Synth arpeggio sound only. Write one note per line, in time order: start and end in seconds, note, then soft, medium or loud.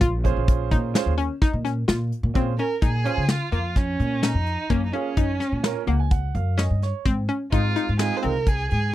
0.01 0.35 F4 loud
0.71 1.06 D#4 medium
1.18 1.35 C#4 medium
1.42 1.59 D#4 medium
1.65 1.82 C#4 medium
1.88 2.23 F4 medium
2.36 2.53 C4 medium
2.59 2.76 C#4 medium
2.82 2.99 D#4 medium
3.05 3.40 C#4 medium
3.52 3.87 A#3 medium
4.23 4.57 C#4 medium
4.70 4.87 A#3 loud
4.93 5.11 C#4 medium
5.17 5.34 D#4 medium
5.40 5.75 C#4 medium
5.87 6.22 A#3 medium
6.58 6.92 C#4 medium
7.05 7.23 C4 medium
7.29 7.46 C#4 medium
7.52 7.70 D#4 medium
7.76 8.10 D#4 medium
8.23 8.57 C4 medium